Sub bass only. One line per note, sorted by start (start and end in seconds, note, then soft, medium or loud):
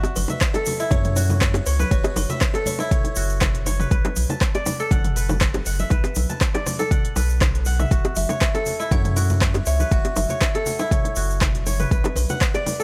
0.17 0.26 F#1 medium
0.91 1.61 F#2 medium
1.67 1.84 C#2 medium
1.91 2.01 F#1 loud
2.17 2.26 F#1 medium
3.16 3.86 F#1 medium
3.91 4.01 B1 loud
4.17 4.26 B1 medium
4.91 5.61 F#1 medium
5.66 5.84 F#1 medium
5.91 6.00 B1 loud
6.16 6.26 B1 medium
7.16 7.86 B1 medium
7.91 8.01 F#1 loud
8.16 8.26 F#1 medium
8.91 9.61 F#2 medium
9.66 9.84 C#2 medium
9.91 10.01 F#1 loud
10.17 10.26 F#1 medium
11.16 11.86 F#1 medium
11.91 12.01 B1 loud
12.16 12.26 B1 medium